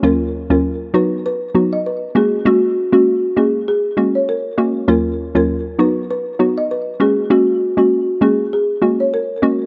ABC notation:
X:1
M:4/4
L:1/16
Q:"Swing 16ths" 1/4=99
K:Gb
V:1 name="Marimba"
B z2 B z2 =B z B z2 ^d B z A z | G z2 G z2 A z A z2 d B3 z | B z2 B z2 =B z B z2 ^d B z A z | G z2 G z2 A z A z2 d B3 z |]
V:2 name="Synth pluck"
[E,,G,B,DF]3 [E,,G,B,DF] z2 [^F,=B,^D^F]2 z2 [F,B,DF]2 z2 [A,_B,_DG]2 | [A,B,DG]3 [A,B,DG] z2 [A,B,DG]2 z2 [A,B,DG]2 z2 [A,B,DG]2 | [E,,G,B,DF]3 [E,,G,B,DF] z2 [^F,=B,^D^F]2 z2 [F,B,DF]2 z2 [A,_B,_DG]2 | [A,B,DG]3 [A,B,DG] z2 [A,B,DG]2 z2 [A,B,DG]2 z2 [A,B,DG]2 |]